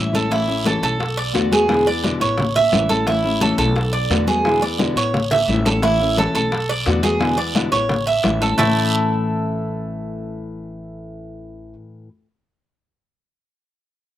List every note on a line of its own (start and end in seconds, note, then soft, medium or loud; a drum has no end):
0.00 0.78 A1 medium
0.00 0.13 E3 medium
0.00 0.13 A3 medium
0.00 0.12 C#4 medium
0.00 0.12 E4 medium
0.00 0.13 E5 medium
0.13 0.29 A3 soft
0.13 0.29 C#4 soft
0.13 0.30 E4 soft
0.13 0.31 A4 medium
0.13 high conga medium
0.13 short guiro medium
0.30 0.47 E3 medium
0.30 0.47 A3 medium
0.30 0.48 C#4 medium
0.30 0.47 E4 medium
0.30 0.65 E4 medium
0.30 high bongo medium
0.30 long guiro medium
0.48 0.64 A3 soft
0.48 0.64 C#4 soft
0.48 0.65 E4 medium
0.48 high bongo soft
0.48 high conga soft
0.64 0.82 E3 medium
0.64 0.82 A3 medium
0.64 0.81 C#4 medium
0.64 0.81 E4 medium
0.64 0.82 A4 medium
0.64 high bongo medium
0.64 high conga medium
0.64 short guiro medium
0.82 1.31 B1 medium
0.82 0.99 A3 soft
0.82 0.99 C#4 soft
0.82 0.99 E4 soft
0.82 1.17 A4 medium
0.82 high bongo soft
0.82 high conga soft
0.82 short guiro medium
1.00 muted nylon-string guitar stroke medium
1.00 high bongo medium
1.00 high conga soft
1.00 long guiro medium
1.17 1.51 D5 medium
1.17 high conga soft
1.33 2.16 E2 medium
1.33 1.51 B2 medium
1.33 1.51 D3 medium
1.33 1.51 A3 medium
1.33 1.51 B3 medium
1.33 1.50 F#4 medium
1.33 high bongo medium
1.33 low bongo medium
1.33 high conga soft
1.33 short guiro medium
1.51 1.68 A3 soft
1.51 1.68 B3 soft
1.51 1.68 F#4 medium
1.51 1.86 G#4 medium
1.51 high bongo soft
1.51 high conga medium
1.51 short guiro medium
1.68 1.85 B2 medium
1.68 1.85 D3 medium
1.68 1.86 G#3 medium
1.68 1.86 B3 medium
1.68 1.85 E4 medium
1.68 high bongo medium
1.68 high conga soft
1.68 long guiro medium
1.86 2.03 G#3 soft
1.86 2.03 B3 soft
1.86 2.03 E4 soft
1.86 2.20 D5 medium
1.86 high conga soft
2.04 2.20 B2 medium
2.04 2.21 D3 medium
2.04 2.21 G#3 medium
2.04 2.20 B3 medium
2.04 2.19 E4 medium
2.04 high bongo medium
2.04 high conga medium
2.04 short guiro medium
2.20 2.69 A1 loud
2.20 2.38 G#3 soft
2.20 2.38 B3 soft
2.20 2.37 E4 medium
2.20 2.55 C#5 medium
2.20 high bongo soft
2.20 high conga soft
2.20 short guiro medium
2.38 muted nylon-string guitar stroke medium
2.38 high bongo medium
2.38 high conga soft
2.38 low conga medium
2.38 long guiro medium
2.56 2.89 E5 medium
2.56 high bongo soft
2.56 high conga soft
2.56 low conga medium
2.72 3.53 A1 medium
2.72 2.89 E3 medium
2.72 2.89 A3 medium
2.72 2.89 C#4 medium
2.72 2.89 E4 medium
2.72 high bongo medium
2.72 low bongo medium
2.72 high conga medium
2.72 short guiro medium
2.89 3.06 A3 soft
2.89 3.07 C#4 soft
2.89 3.07 E4 soft
2.89 3.06 A4 medium
2.89 high bongo soft
2.89 high conga medium
2.89 short guiro medium
3.07 3.24 E3 medium
3.07 3.24 A3 medium
3.07 3.23 C#4 medium
3.07 3.41 E4 medium
3.07 3.23 E4 medium
3.07 high bongo medium
3.07 long guiro medium
3.24 3.41 A3 soft
3.24 3.41 C#4 soft
3.24 3.41 E4 soft
3.24 high bongo soft
3.24 high conga soft
3.41 3.58 E3 medium
3.41 3.58 A3 medium
3.41 3.58 C#4 medium
3.41 3.57 E4 medium
3.41 3.57 A4 medium
3.41 high bongo medium
3.41 high conga loud
3.41 short guiro medium
3.58 4.06 B1 medium
3.58 3.74 A3 soft
3.58 3.75 C#4 soft
3.58 3.75 E4 soft
3.58 3.92 A4 medium
3.58 high bongo soft
3.58 high conga soft
3.58 short guiro medium
3.75 muted nylon-string guitar stroke medium
3.75 high bongo medium
3.75 high conga soft
3.75 long guiro medium
3.93 4.27 D5 medium
3.93 high conga soft
4.10 4.91 E2 medium
4.10 4.27 B2 medium
4.10 4.27 D3 medium
4.10 4.27 A3 medium
4.10 4.26 B3 medium
4.10 4.26 F#4 medium
4.10 high bongo medium
4.10 low bongo medium
4.10 high conga soft
4.10 short guiro medium
4.27 4.45 A3 soft
4.27 4.44 B3 soft
4.27 4.44 F#4 soft
4.27 4.61 G#4 medium
4.27 high bongo soft
4.27 high conga medium
4.27 short guiro medium
4.45 4.62 B2 medium
4.45 4.62 D3 medium
4.45 4.62 G#3 medium
4.45 4.62 B3 medium
4.45 4.61 E4 medium
4.45 high bongo medium
4.45 high conga soft
4.45 long guiro medium
4.62 4.78 G#3 soft
4.62 4.78 B3 soft
4.62 4.79 E4 soft
4.62 4.96 D5 medium
4.62 high conga soft
4.78 4.96 B2 medium
4.78 4.96 D3 medium
4.78 4.96 G#3 medium
4.78 4.95 B3 medium
4.78 4.95 E4 medium
4.78 high bongo medium
4.78 high conga loud
4.78 short guiro medium
4.96 5.44 A1 loud
4.96 5.14 G#3 soft
4.96 5.13 B3 soft
4.96 5.13 E4 soft
4.96 5.30 C#5 medium
4.96 high bongo soft
4.96 high conga soft
4.96 short guiro medium
5.14 muted nylon-string guitar stroke medium
5.14 high bongo medium
5.14 high conga soft
5.14 low conga medium
5.14 long guiro medium
5.31 5.65 E5 medium
5.31 high bongo medium
5.31 high conga soft
5.31 low conga medium
5.48 6.29 A1 loud
5.48 5.65 E3 medium
5.48 5.65 A3 medium
5.48 5.65 C#4 medium
5.48 5.64 E4 medium
5.48 high conga medium
5.48 short guiro medium
5.54 low bongo medium
5.65 5.81 A3 soft
5.65 5.82 C#4 soft
5.65 5.82 E4 soft
5.65 5.83 A4 medium
5.65 low bongo medium
5.65 high conga medium
5.65 short guiro medium
5.82 5.99 E3 medium
5.82 5.99 A3 medium
5.82 5.99 C#4 medium
5.82 5.99 E4 medium
5.82 6.16 E4 medium
5.82 high bongo medium
5.82 high conga soft
5.82 long guiro medium
6.00 6.17 A3 soft
6.00 6.17 C#4 soft
6.00 6.17 E4 medium
6.00 high bongo soft
6.00 high conga soft
6.17 6.34 E3 medium
6.17 6.34 A3 medium
6.17 6.34 C#4 medium
6.17 6.33 E4 medium
6.17 6.34 A4 medium
6.17 high bongo medium
6.17 high conga loud
6.17 short guiro medium
6.34 6.83 B1 medium
6.34 6.52 A3 soft
6.34 6.51 C#4 soft
6.34 6.51 E4 soft
6.34 6.68 A4 medium
6.34 high bongo soft
6.34 high conga soft
6.34 short guiro medium
6.52 muted nylon-string guitar stroke medium
6.52 high bongo medium
6.52 high conga soft
6.52 long guiro medium
6.69 7.03 D5 medium
6.69 high conga soft
6.86 7.67 E2 loud
6.86 7.03 B2 medium
6.86 7.03 D3 medium
6.86 7.03 A3 medium
6.86 7.03 B3 medium
6.86 7.02 F#4 medium
6.86 high bongo medium
6.86 low bongo medium
6.86 high conga soft
6.86 short guiro medium
7.03 7.20 A3 soft
7.03 7.19 B3 soft
7.03 7.20 F#4 medium
7.03 7.37 G#4 medium
7.03 high bongo soft
7.03 high conga medium
7.03 short guiro medium
7.19 7.36 B2 medium
7.19 7.37 D3 medium
7.19 7.37 G#3 medium
7.19 7.37 B3 medium
7.19 7.35 E4 medium
7.19 high bongo medium
7.19 long guiro medium
7.37 7.54 G#3 soft
7.37 7.54 B3 soft
7.37 7.54 E4 soft
7.37 7.71 D5 medium
7.37 high conga soft
7.55 7.72 B2 medium
7.55 7.72 D3 medium
7.55 7.72 G#3 medium
7.55 7.71 B3 medium
7.55 7.71 E4 medium
7.55 high bongo medium
7.55 high conga loud
7.55 short guiro medium
7.72 8.20 A1 medium
7.72 7.89 G#3 soft
7.72 7.89 B3 soft
7.72 7.89 E4 medium
7.72 8.06 C#5 medium
7.72 high bongo soft
7.72 high conga soft
7.72 short guiro medium
7.89 muted nylon-string guitar stroke medium
7.89 high bongo medium
7.89 high conga soft
7.89 low conga medium
7.89 long guiro medium
8.07 8.40 E5 medium
8.07 high bongo soft
8.07 high conga soft
8.23 8.55 A1 loud
8.23 8.40 E3 medium
8.23 8.40 A3 medium
8.23 8.40 C#4 medium
8.23 8.39 E4 medium
8.23 high bongo medium
8.23 low bongo medium
8.23 high conga medium
8.23 short guiro medium
8.41 8.58 A3 soft
8.41 8.58 C#4 soft
8.41 8.58 E4 soft
8.41 8.58 A4 medium
8.41 high bongo soft
8.41 high conga medium
8.41 short guiro medium
8.58 11.73 A1 loud
8.58 12.08 A2 medium
8.58 12.08 E3 medium
8.58 11.73 A3 medium
8.58 12.09 A3 medium
8.58 12.10 C#4 medium
8.58 11.74 E4 medium
8.58 12.10 E4 medium
8.58 11.74 A4 medium
8.58 low bongo loud
8.58 low conga loud
8.58 long guiro loud